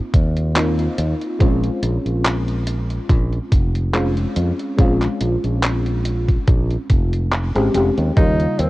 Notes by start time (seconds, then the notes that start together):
Already playing: A#3 C4 D#4 F4
0.14 D#2, kick, closed hi-hat
0.37 closed hi-hat
0.55 A#3 C4 D#4 F4, clap, closed hi-hat
0.79 closed hi-hat
0.98 D#2, closed hi-hat
1.21 closed hi-hat
1.39 A#1 G#3 C4 C#4 F4, kick, closed hi-hat
1.64 closed hi-hat
1.83 A#1, closed hi-hat
2.06 A#1, closed hi-hat
2.25 clap, closed hi-hat
2.48 closed hi-hat
2.67 closed hi-hat
2.90 closed hi-hat
3.09 A#1, kick, closed hi-hat
3.33 closed hi-hat
3.52 F1, kick, closed hi-hat
3.75 closed hi-hat
3.93 G#3 C4 C#4 F4, clap, closed hi-hat
4.17 closed hi-hat
4.36 F2, closed hi-hat
4.59 closed hi-hat
4.77 A#1 G#3 C4 C#4 F4, kick, closed hi-hat
5.02 clap, closed hi-hat
5.21 A#1, closed hi-hat
5.44 A#1, closed hi-hat
5.63 clap, closed hi-hat
5.86 closed hi-hat
6.05 closed hi-hat
6.28 kick, closed hi-hat
6.47 A#1, kick, closed hi-hat
6.71 closed hi-hat
6.90 F1, kick, closed hi-hat
7.13 closed hi-hat
7.32 clap, closed hi-hat
7.55 G#1 G#3 C4 C#4 G4, closed hi-hat
7.74 F1 G#3 C4 C#4 G4, closed hi-hat
7.97 D#2, closed hi-hat
8.16 D#2 C#3 G3 A#3 D#4 F4, kick, closed hi-hat
8.40 closed hi-hat
8.59 D#2 C4, closed hi-hat